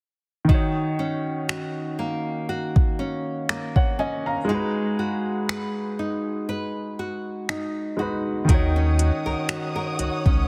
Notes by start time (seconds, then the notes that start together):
0.45 D#3 D#4
0.49 D#3 F#4, kick
0.54 C#5
0.99 C#4
1.49 F#4, finger snap
1.99 A#3
2.49 F#4
2.76 kick
2.99 C#4
3.49 A#3, finger snap
3.76 C#5 F#5, kick
3.99 C#4 D#5 G#5
4.26 F5 A#5
4.45 G#3 D#4
4.49 G#3 F#4
4.54 B4
4.99 F#4
5.49 B4, finger snap
5.99 D#4
6.49 B4
6.99 F#4
7.49 D#4, finger snap
7.97 G#3 D#4 F#4
8.01 B4
8.45 D#3 D#4
8.49 D#2 D#3 F#4 A#4 C#5 F#5 D#6, kick, closed hi-hat
8.54 C#5
8.76 C#4
8.99 F#4, closed hi-hat
9.26 C#2 A#4
9.49 F#4, finger snap, closed hi-hat
9.76 A#4
9.99 C#2 F#4, closed hi-hat
10.26 C#2 C#4, kick